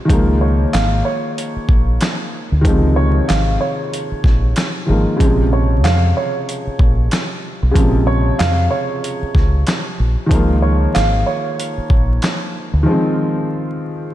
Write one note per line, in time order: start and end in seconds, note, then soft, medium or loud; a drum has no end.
0.05 2.59 D#3 medium
0.05 2.60 F3 medium
0.10 0.64 C#2 loud
0.10 2.61 G#3 medium
0.10 2.63 A#3 medium
0.10 kick loud
0.10 closed hi-hat medium
0.41 0.70 C#5 medium
0.73 1.01 G#1 loud
0.73 1.02 F5 medium
0.73 snare loud
0.73 clap medium
0.73 closed hi-hat medium
1.05 2.15 C#5 medium
1.38 closed hi-hat medium
1.56 muted fingered electric bass stroke soft
1.69 1.96 A#1 medium
1.69 kick loud
2.01 snare loud
2.01 clap medium
2.01 closed hi-hat medium
2.52 2.63 D2 medium
2.61 3.20 C#2 loud
2.61 4.83 D#3 medium
2.61 4.84 F3 medium
2.61 kick loud
2.61 closed hi-hat medium
2.67 4.87 C3 medium
2.67 4.85 G#3 medium
2.96 3.25 C#5 medium
3.28 3.57 G#1 medium
3.28 3.57 F5 medium
3.28 snare loud
3.28 clap medium
3.28 closed hi-hat medium
3.61 4.52 C#5 medium
3.94 closed hi-hat medium
4.12 muted fingered electric bass stroke soft
4.24 4.52 A#1 medium
4.24 kick loud
4.24 snare soft
4.56 snare loud
4.56 clap medium
4.56 closed hi-hat medium
4.86 5.04 G#1 medium
4.86 5.19 D#3 medium
4.86 5.18 F3 medium
4.86 5.20 G#3 medium
4.86 5.21 A#3 medium
5.16 7.70 C#3 medium
5.16 7.71 F3 medium
5.16 kick loud
5.21 5.85 A#1 loud
5.21 7.74 C3 medium
5.21 7.72 G#3 medium
5.21 closed hi-hat medium
5.53 5.81 C#5 medium
5.84 6.12 F2 medium
5.84 6.13 F5 medium
5.84 snare loud
5.84 clap medium
5.84 closed hi-hat medium
6.17 7.26 C#5 medium
6.49 closed hi-hat medium
6.67 muted fingered electric bass stroke soft
6.79 7.07 A#1 loud
6.79 kick loud
7.11 snare loud
7.11 clap medium
7.11 closed hi-hat medium
7.63 7.74 B1 medium
7.71 10.25 C#3 medium
7.71 10.26 F3 medium
7.76 8.30 A#1 loud
7.76 10.29 C3 medium
7.76 10.27 G#3 medium
7.76 kick loud
7.76 closed hi-hat medium
8.07 8.36 C#5 medium
8.39 8.67 F2 loud
8.39 8.68 F5 medium
8.39 snare loud
8.39 clap loud
8.39 closed hi-hat medium
8.71 9.63 C#5 medium
9.04 closed hi-hat medium
9.22 muted fingered electric bass stroke soft
9.35 9.62 C#2 medium
9.35 kick loud
9.35 snare soft
9.67 snare loud
9.67 clap medium
9.67 closed hi-hat medium
10.00 10.15 A#1 medium
10.27 12.80 D#3 medium
10.27 12.81 F3 medium
10.31 10.86 C#2 loud
10.31 12.83 G#3 medium
10.31 12.84 A#3 medium
10.31 kick loud
10.31 closed hi-hat loud
10.62 10.91 C#5 medium
10.94 11.23 G#1 loud
10.94 11.23 F5 medium
10.94 snare loud
10.94 clap medium
10.94 closed hi-hat medium
11.26 12.37 C#5 medium
11.60 closed hi-hat medium
11.78 muted fingered electric bass stroke soft
11.90 12.18 A#1 medium
11.90 kick loud
12.22 snare loud
12.22 clap medium
12.22 closed hi-hat medium
12.73 12.85 D2 medium
12.83 14.14 D#3 medium
12.83 14.14 F3 medium
12.88 14.14 G#3 medium
12.88 14.14 C4 medium